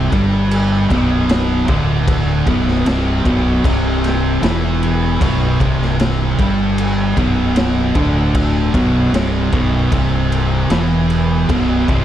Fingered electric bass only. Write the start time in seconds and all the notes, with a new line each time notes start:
0.12 G1
0.90 B0
1.68 D1
2.47 B0
2.87 C1
3.25 B0
3.64 C1
4.42 E1
5.21 B0
5.60 C1
6.39 G1
7.17 B0
7.95 D1
8.74 B0
9.13 C1
9.52 B0
9.92 C1
10.70 E1
11.49 B0
11.88 C1